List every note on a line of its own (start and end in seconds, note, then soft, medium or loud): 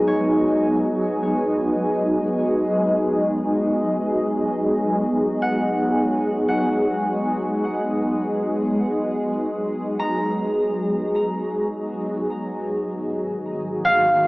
0.00 14.27 F#3 medium
0.00 12.35 G#3 medium
0.00 12.36 B3 medium
0.00 13.78 D#4 medium
0.00 14.27 G#4 medium
0.07 2.74 C#5 medium
5.42 6.48 F#5 soft
6.48 9.15 F#5 soft
9.99 12.66 A#5 medium
12.34 14.27 G#2 medium
12.71 14.27 D#3 medium
13.14 14.27 F#4 medium
13.40 14.27 A#3 medium
13.85 14.27 F5 medium
14.11 14.27 A#4 medium